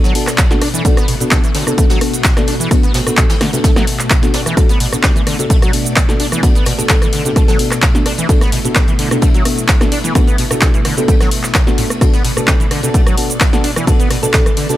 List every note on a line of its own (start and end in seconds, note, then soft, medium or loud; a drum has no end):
0.00 14.77 B2 medium
0.00 0.13 F#3 loud
0.00 14.77 A3 medium
0.00 0.13 B3 loud
0.00 0.13 D4 medium
0.00 0.13 F#4 medium
0.00 0.13 A4 loud
0.00 0.84 D5 medium
0.00 snare medium
0.04 closed hi-hat soft
0.04 shaker soft
0.15 0.28 B3 medium
0.15 0.28 D4 medium
0.15 0.28 F#4 medium
0.15 0.28 A4 loud
0.15 open hi-hat loud
0.15 ride medium
0.27 cross-stick medium
0.27 snare soft
0.27 clap soft
0.27 closed hi-hat soft
0.27 shaker medium
0.38 kick loud
0.38 snare loud
0.38 clap loud
0.38 closed hi-hat medium
0.38 ride loud
0.38 shaker medium
0.51 0.62 B3 medium
0.51 0.62 D4 medium
0.51 0.62 F#4 medium
0.51 0.62 A4 loud
0.51 snare soft
0.51 closed hi-hat soft
0.51 shaker soft
0.62 0.68 D4 medium
0.62 cross-stick medium
0.62 open hi-hat loud
0.62 ride medium
0.74 0.83 E3 loud
0.74 closed hi-hat soft
0.74 ride soft
0.74 shaker medium
0.84 0.89 B2 loud
0.84 0.98 B3 medium
0.84 0.98 D4 medium
0.84 0.98 F#4 medium
0.84 4.56 F#4 medium
0.84 0.98 A4 medium
0.84 kick loud
0.84 closed hi-hat medium
0.84 ride loud
0.84 shaker medium
0.97 1.06 B3 medium
0.97 cross-stick medium
0.97 snare soft
0.97 closed hi-hat soft
0.97 shaker soft
1.08 1.15 B2 medium
1.08 open hi-hat loud
1.08 ride medium
1.20 1.24 B2 medium
1.20 1.40 B3 medium
1.20 1.40 D4 medium
1.20 1.40 F#4 medium
1.20 1.40 A4 loud
1.20 closed hi-hat soft
1.20 shaker medium
1.31 1.38 C3 medium
1.31 kick loud
1.31 cross-stick medium
1.31 snare loud
1.31 clap loud
1.31 closed hi-hat medium
1.31 ride medium
1.31 shaker medium
1.44 1.50 E3 medium
1.44 closed hi-hat soft
1.44 shaker soft
1.55 1.65 D3 medium
1.55 snare loud
1.55 open hi-hat loud
1.55 ride medium
1.67 1.73 C3 medium
1.67 1.99 B3 medium
1.67 1.99 D4 medium
1.67 1.99 F#4 medium
1.67 1.99 A4 loud
1.67 cross-stick medium
1.67 closed hi-hat soft
1.67 shaker medium
1.77 1.85 A3 medium
1.77 kick loud
1.77 closed hi-hat medium
1.77 ride medium
1.77 shaker medium
1.90 1.99 F#3 loud
1.90 snare loud
1.90 closed hi-hat soft
1.90 ride medium
1.90 shaker soft
2.01 2.14 B3 medium
2.01 2.14 D4 medium
2.01 2.14 F#4 medium
2.01 2.14 A4 loud
2.01 cross-stick medium
2.01 open hi-hat loud
2.13 closed hi-hat soft
2.13 ride medium
2.13 shaker medium
2.24 kick loud
2.24 snare loud
2.24 clap loud
2.24 closed hi-hat medium
2.24 ride medium
2.24 shaker medium
2.37 2.48 B3 medium
2.37 2.48 D4 medium
2.37 2.48 F#4 medium
2.37 2.48 A4 loud
2.37 cross-stick medium
2.37 snare soft
2.37 closed hi-hat soft
2.37 shaker soft
2.47 2.54 D4 medium
2.47 open hi-hat loud
2.47 ride medium
2.60 2.69 E3 loud
2.60 closed hi-hat soft
2.60 shaker medium
2.71 2.75 B2 loud
2.71 2.84 B3 medium
2.71 2.84 D4 medium
2.71 2.84 F#4 medium
2.71 2.84 A4 medium
2.71 kick loud
2.71 cross-stick medium
2.71 closed hi-hat medium
2.71 ride medium
2.71 shaker medium
2.83 2.92 B3 medium
2.83 closed hi-hat soft
2.83 shaker soft
2.94 3.01 B2 medium
2.94 snare loud
2.94 open hi-hat loud
2.94 ride medium
3.06 3.10 B2 medium
3.06 3.26 B3 medium
3.06 3.26 D4 medium
3.06 3.26 F#4 medium
3.06 3.26 A4 loud
3.06 cross-stick medium
3.06 closed hi-hat soft
3.06 shaker medium
3.17 3.24 C3 medium
3.17 kick loud
3.17 clap loud
3.17 closed hi-hat medium
3.17 ride medium
3.17 shaker medium
3.30 3.36 E3 medium
3.30 snare loud
3.30 closed hi-hat soft
3.30 ride medium
3.30 shaker soft
3.41 3.51 D3 medium
3.41 cross-stick medium
3.41 snare medium
3.41 open hi-hat loud
3.53 3.59 C3 medium
3.53 3.85 B3 loud
3.53 3.85 D4 medium
3.53 3.85 F#4 medium
3.53 3.85 A4 loud
3.53 closed hi-hat soft
3.53 ride medium
3.53 shaker medium
3.64 3.71 A3 medium
3.64 kick loud
3.64 snare loud
3.64 closed hi-hat medium
3.64 ride medium
3.64 shaker medium
3.76 3.85 F#3 loud
3.76 cross-stick medium
3.76 snare medium
3.76 closed hi-hat soft
3.76 shaker soft
3.87 open hi-hat loud
3.87 ride medium
3.99 snare soft
3.99 clap soft
3.99 closed hi-hat soft
3.99 shaker medium
4.10 kick loud
4.10 cross-stick medium
4.10 snare loud
4.10 clap loud
4.10 closed hi-hat medium
4.10 ride medium
4.10 shaker medium
4.23 4.42 B3 medium
4.23 4.42 D4 medium
4.23 4.42 F#4 medium
4.23 4.42 A4 loud
4.23 snare soft
4.23 closed hi-hat soft
4.23 shaker soft
4.33 4.41 D4 medium
4.33 snare loud
4.33 open hi-hat loud
4.33 ride medium
4.46 4.55 E3 loud
4.46 cross-stick medium
4.46 closed hi-hat soft
4.46 ride soft
4.46 shaker medium
4.57 4.61 B2 loud
4.57 4.70 B3 medium
4.57 4.70 D4 medium
4.57 4.70 F#4 medium
4.57 4.70 A4 medium
4.57 8.28 D5 medium
4.57 kick loud
4.57 cross-stick medium
4.57 closed hi-hat medium
4.57 ride medium
4.57 shaker medium
4.69 4.78 B3 medium
4.69 snare soft
4.69 closed hi-hat soft
4.69 shaker soft
4.80 4.87 B2 medium
4.80 open hi-hat loud
4.80 ride medium
4.92 4.96 B2 medium
4.92 5.12 B3 medium
4.92 5.12 D4 medium
4.92 5.12 F#4 medium
4.92 5.12 A4 loud
4.92 cross-stick medium
4.92 closed hi-hat soft
4.92 shaker medium
5.03 5.10 C3 medium
5.03 kick loud
5.03 snare loud
5.03 clap loud
5.03 closed hi-hat medium
5.03 ride medium
5.03 shaker medium
5.16 5.22 E3 medium
5.16 closed hi-hat soft
5.16 shaker soft
5.27 5.37 D3 medium
5.27 cross-stick medium
5.27 open hi-hat loud
5.27 ride medium
5.39 5.45 C3 medium
5.39 5.71 B3 loud
5.39 5.71 D4 medium
5.39 5.71 F#4 medium
5.39 5.71 A4 loud
5.39 closed hi-hat soft
5.39 shaker medium
5.50 5.57 A3 medium
5.50 kick loud
5.50 closed hi-hat medium
5.50 ride medium
5.50 shaker medium
5.62 5.71 F#3 loud
5.62 cross-stick medium
5.62 closed hi-hat soft
5.62 shaker soft
5.73 5.86 B3 medium
5.73 5.86 D4 medium
5.73 5.86 F#4 medium
5.73 5.86 A4 loud
5.73 open hi-hat loud
5.73 ride medium
5.86 closed hi-hat soft
5.86 shaker medium
5.96 kick loud
5.96 cross-stick medium
5.96 snare loud
5.96 clap loud
5.96 closed hi-hat medium
5.96 ride medium
5.96 shaker medium
6.09 6.21 B3 medium
6.09 6.21 D4 medium
6.09 6.21 F#4 medium
6.09 6.21 A4 loud
6.09 snare soft
6.09 closed hi-hat soft
6.09 shaker soft
6.19 6.27 D4 medium
6.19 open hi-hat loud
6.19 ride medium
6.32 6.41 E3 loud
6.32 cross-stick medium
6.32 closed hi-hat soft
6.32 shaker medium
6.43 6.47 B2 loud
6.43 6.56 B3 medium
6.43 6.56 D4 medium
6.43 6.56 F#4 medium
6.43 6.56 A4 medium
6.43 kick loud
6.43 closed hi-hat medium
6.43 ride loud
6.43 shaker medium
6.55 6.64 B3 medium
6.55 closed hi-hat soft
6.55 shaker soft
6.65 6.73 B2 medium
6.65 cross-stick medium
6.65 open hi-hat loud
6.65 ride medium
6.79 6.82 B2 medium
6.79 6.98 B3 medium
6.79 6.98 D4 medium
6.79 6.98 F#4 medium
6.79 6.86 A4 medium
6.79 6.98 A4 loud
6.79 closed hi-hat soft
6.79 shaker medium
6.89 6.96 C3 medium
6.89 6.97 A4 medium
6.89 kick loud
6.89 snare loud
6.89 clap loud
6.89 closed hi-hat medium
6.89 ride medium
6.89 shaker medium
7.02 7.08 E3 medium
7.02 cross-stick medium
7.02 closed hi-hat soft
7.02 shaker soft
7.13 7.23 D3 medium
7.13 open hi-hat loud
7.13 ride medium
7.25 7.31 C3 medium
7.25 7.57 B3 loud
7.25 7.57 D4 medium
7.25 7.57 F#4 medium
7.25 7.57 A4 loud
7.25 closed hi-hat soft
7.25 ride soft
7.25 shaker medium
7.36 7.43 A3 medium
7.36 7.44 A4 medium
7.36 kick loud
7.36 cross-stick medium
7.36 closed hi-hat medium
7.36 ride medium
7.36 shaker medium
7.48 7.58 F#3 loud
7.48 7.55 A4 medium
7.48 snare medium
7.48 closed hi-hat soft
7.48 shaker soft
7.59 7.72 B3 medium
7.59 7.72 D4 medium
7.59 7.72 F#4 medium
7.59 7.72 A4 loud
7.59 open hi-hat loud
7.59 ride medium
7.71 cross-stick medium
7.71 snare soft
7.71 clap soft
7.71 closed hi-hat soft
7.71 shaker medium
7.82 kick loud
7.82 snare loud
7.82 clap loud
7.82 closed hi-hat medium
7.82 ride medium
7.82 shaker medium
7.95 8.07 B3 medium
7.95 8.07 D4 medium
7.95 8.07 F#4 medium
7.95 8.07 A4 loud
7.95 snare soft
7.95 closed hi-hat soft
7.95 shaker soft
8.06 8.13 D4 medium
8.06 cross-stick medium
8.06 open hi-hat loud
8.06 ride medium
8.18 8.27 E3 loud
8.18 closed hi-hat soft
8.18 ride soft
8.18 shaker medium
8.29 8.33 B2 loud
8.29 8.42 B3 medium
8.29 8.42 D4 medium
8.29 12.00 E4 medium
8.29 8.42 F#4 medium
8.29 8.42 A4 medium
8.29 kick loud
8.29 closed hi-hat medium
8.29 ride medium
8.29 shaker medium
8.41 8.50 B3 medium
8.41 cross-stick medium
8.41 snare soft
8.41 closed hi-hat soft
8.41 shaker soft
8.52 8.59 B2 medium
8.52 open hi-hat loud
8.52 ride medium
8.65 8.68 B2 medium
8.65 8.84 B3 medium
8.65 8.84 D4 medium
8.65 8.84 F#4 medium
8.65 8.84 A4 loud
8.65 closed hi-hat soft
8.65 shaker medium
8.75 8.82 C3 medium
8.75 kick loud
8.75 cross-stick medium
8.75 snare loud
8.75 clap loud
8.75 closed hi-hat medium
8.75 ride medium
8.75 shaker medium
8.88 8.94 E3 medium
8.88 closed hi-hat soft
8.88 shaker soft
8.99 9.09 D3 medium
8.99 open hi-hat loud
8.99 ride medium
9.11 9.17 C3 medium
9.11 9.43 B3 loud
9.11 9.43 D4 medium
9.11 9.43 F#4 medium
9.11 9.43 A4 loud
9.11 cross-stick medium
9.11 closed hi-hat soft
9.11 shaker medium
9.21 9.29 A3 medium
9.21 kick loud
9.21 closed hi-hat medium
9.21 ride loud
9.21 shaker medium
9.34 9.43 F#3 loud
9.34 closed hi-hat soft
9.34 shaker soft
9.45 9.58 B3 medium
9.45 9.58 D4 medium
9.45 9.58 F#4 medium
9.45 9.58 A4 loud
9.45 cross-stick medium
9.45 open hi-hat loud
9.45 ride medium
9.58 closed hi-hat soft
9.58 shaker medium
9.68 kick loud
9.68 snare loud
9.68 clap loud
9.68 closed hi-hat medium
9.68 ride loud
9.68 shaker medium
9.81 9.93 B3 medium
9.81 9.93 D4 medium
9.81 9.93 F#4 medium
9.81 9.93 A4 loud
9.81 cross-stick medium
9.81 snare soft
9.81 closed hi-hat soft
9.81 shaker soft
9.92 9.99 D4 medium
9.92 open hi-hat loud
9.92 ride medium
10.04 10.13 E3 loud
10.04 closed hi-hat soft
10.04 shaker medium
10.15 10.19 B2 loud
10.15 10.28 B3 medium
10.15 10.28 D4 medium
10.15 10.28 F#4 medium
10.15 10.28 A4 medium
10.15 kick loud
10.15 cross-stick medium
10.15 closed hi-hat medium
10.15 ride medium
10.15 shaker medium
10.27 10.37 B3 medium
10.27 closed hi-hat soft
10.27 shaker soft
10.38 10.45 B2 medium
10.38 open hi-hat loud
10.38 ride medium
10.51 10.54 B2 medium
10.51 10.70 B3 medium
10.51 10.70 D4 medium
10.51 10.70 F#4 medium
10.51 10.70 A4 medium
10.51 cross-stick medium
10.51 closed hi-hat soft
10.51 shaker medium
10.61 10.68 C3 medium
10.61 kick loud
10.61 snare loud
10.61 clap loud
10.61 closed hi-hat medium
10.61 ride medium
10.61 shaker medium
10.74 10.80 E3 medium
10.74 closed hi-hat soft
10.74 shaker soft
10.85 10.95 D3 medium
10.85 cross-stick medium
10.85 open hi-hat loud
10.85 ride medium
10.97 11.03 C3 medium
10.97 11.29 B3 loud
10.97 11.29 D4 medium
10.97 11.29 F#4 medium
10.97 11.29 A4 loud
10.97 closed hi-hat soft
10.97 ride soft
10.97 shaker medium
11.08 11.15 A3 medium
11.08 kick loud
11.08 closed hi-hat medium
11.08 ride medium
11.08 shaker medium
11.20 11.29 F#3 loud
11.20 cross-stick medium
11.20 snare medium
11.20 closed hi-hat soft
11.20 shaker soft
11.31 open hi-hat loud
11.31 ride medium
11.43 snare soft
11.43 clap soft
11.43 shaker medium
11.54 11.59 B2 loud
11.54 kick loud
11.54 cross-stick medium
11.54 snare loud
11.54 clap loud
11.54 closed hi-hat medium
11.54 ride medium
11.54 shaker medium
11.67 11.86 B3 medium
11.67 11.86 D4 medium
11.67 11.86 F#4 medium
11.67 11.87 A4 loud
11.67 snare soft
11.67 closed hi-hat soft
11.67 shaker soft
11.78 11.85 A2 medium
11.78 open hi-hat loud
11.78 ride medium
11.90 cross-stick medium
11.90 closed hi-hat soft
11.90 ride soft
11.90 shaker medium
12.01 12.05 B2 loud
12.01 12.14 B3 medium
12.01 12.14 D4 medium
12.01 12.14 F#4 medium
12.01 12.14 A4 medium
12.01 14.77 D5 loud
12.01 kick loud
12.01 cross-stick medium
12.01 closed hi-hat medium
12.01 ride medium
12.01 shaker medium
12.14 12.23 B3 medium
12.14 snare soft
12.14 closed hi-hat soft
12.14 shaker soft
12.24 12.31 B2 medium
12.24 open hi-hat loud
12.24 ride medium
12.37 12.40 B2 medium
12.37 12.56 B3 medium
12.37 12.56 D4 medium
12.37 12.56 F#4 medium
12.37 12.56 A4 loud
12.37 cross-stick medium
12.37 closed hi-hat soft
12.37 shaker medium
12.47 12.54 C3 medium
12.47 kick loud
12.47 snare loud
12.47 clap loud
12.47 closed hi-hat medium
12.47 ride medium
12.47 shaker medium
12.60 12.66 E3 medium
12.60 closed hi-hat soft
12.60 shaker soft
12.71 12.81 D3 medium
12.71 cross-stick medium
12.71 open hi-hat loud
12.71 ride medium
12.83 12.89 C3 medium
12.83 13.15 B3 loud
12.83 13.15 D4 medium
12.83 13.15 F#4 medium
12.83 13.15 A4 loud
12.83 closed hi-hat soft
12.83 shaker medium
12.94 13.01 A3 medium
12.94 kick loud
12.94 closed hi-hat medium
12.94 ride medium
12.94 shaker medium
13.06 13.16 F#3 loud
13.06 cross-stick medium
13.06 closed hi-hat soft
13.06 shaker soft
13.18 13.30 B3 medium
13.18 13.30 D4 medium
13.18 13.30 F#4 medium
13.18 13.30 A4 loud
13.18 open hi-hat loud
13.18 ride medium
13.30 closed hi-hat soft
13.30 shaker medium
13.40 kick loud
13.40 cross-stick medium
13.40 snare loud
13.40 clap loud
13.40 closed hi-hat medium
13.40 ride loud
13.40 shaker medium
13.53 13.65 B3 medium
13.53 13.65 D4 medium
13.53 13.65 F#4 medium
13.53 13.65 A4 loud
13.53 snare soft
13.53 closed hi-hat soft
13.53 shaker soft
13.64 13.71 D4 medium
13.64 open hi-hat loud
13.64 ride medium
13.76 13.85 E3 loud
13.76 cross-stick medium
13.76 closed hi-hat soft
13.76 shaker medium
13.87 13.91 B2 loud
13.87 14.00 B3 medium
13.87 14.00 D4 medium
13.87 14.00 F#4 medium
13.87 14.00 A4 medium
13.87 kick loud
13.87 closed hi-hat medium
13.87 ride loud
13.87 shaker medium
13.99 14.09 B3 medium
13.99 closed hi-hat soft
13.99 shaker soft
14.10 14.17 B2 medium
14.10 cross-stick medium
14.10 open hi-hat loud
14.10 ride medium
14.23 14.26 B2 medium
14.23 14.42 B3 medium
14.23 14.42 D4 medium
14.23 14.42 F#4 medium
14.23 14.42 A4 loud
14.23 14.30 A4 medium
14.23 closed hi-hat soft
14.23 shaker medium
14.33 14.41 C3 medium
14.33 14.42 A4 medium
14.33 kick loud
14.33 snare loud
14.33 clap loud
14.33 closed hi-hat medium
14.33 ride medium
14.33 shaker medium
14.46 14.52 E3 medium
14.46 cross-stick medium
14.46 closed hi-hat soft
14.46 shaker soft
14.57 14.67 D3 medium
14.57 open hi-hat loud
14.57 ride medium
14.69 14.75 C3 medium
14.69 14.77 B3 loud
14.69 14.77 D4 medium
14.69 14.77 F#4 medium
14.69 14.77 A4 loud
14.69 closed hi-hat soft
14.69 ride soft
14.69 shaker medium